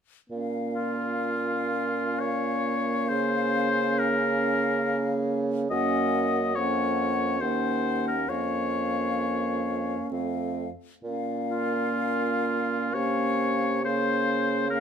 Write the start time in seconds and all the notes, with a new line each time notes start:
0.30 A#2 A#3 C#4 F5
0.75 F4
2.20 C#5
3.09 C#3 C5
3.99 A#4
5.70 F#2 A#3 C#4 D#5 F#5
6.56 F2 A#3 C#4 C#5 F#5
7.41 D#2 A#3 C#4 C5 F#5
8.08 A#4
8.29 F2 A#3 C#4 C#5 F5
10.11 F2 A3 C4 F5
11.03 A#2 A#3 C#4 F5
11.51 F4
12.94 C3 A#3 C#4 C#5 F5
13.84 C#3 A#3 C#4 C5 F5
14.70 A#3 C#4 A#4 F5